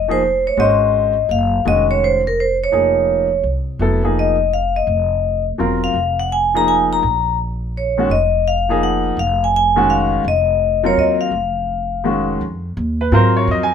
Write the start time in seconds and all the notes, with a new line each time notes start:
Already playing: F1
0.08 F3 A#3 D#4 G#4 C5
0.47 C#5
0.57 G#1 G#3 C#4 F#4 C5 D#5
1.29 F#1 F5
1.65 F1 D#3 G#3 C#4 F#4 D#5
1.91 C#5
2.04 C5
2.27 A#4
2.40 C5
2.64 C#5
2.72 F1 F3 A#3 D#4 G#4
3.43 C2
3.79 F1 F#3 B3 E4 A4
4.03 F3 A#3 D#4 G#4
4.19 D#5
4.54 F5
4.76 D#5
4.87 F1
5.58 E1 F#3 C4 F4 A#4
5.84 F5
5.94 F1
6.20 F#5
6.32 G#5
6.54 F3 A#3 D#4 G#4 A#5
6.68 G#5
6.93 A#5
7.03 A#1
7.77 C#5
7.97 D#3 G#3 C#4 F#4
8.09 F1 D#5
8.48 F5
8.69 F3 A#3 D#4 G#4
8.83 F#5
9.17 F1 F5
9.44 G#5
9.56 G#5
9.76 D#3 G#3 C#4 F#4
9.90 F5
10.24 F1 D#5
10.83 F#3 C4 F4 A#4 C#5
10.96 D#2 D#5
11.21 F5
11.31 F1
12.04 D#3 G#3 C#4 F#4
12.41 F2
12.77 D#2
13.01 B4
13.12 G#2 F#3 C4 F4 A#4 C5
13.37 C#5
13.47 F2 D#5
13.63 G#5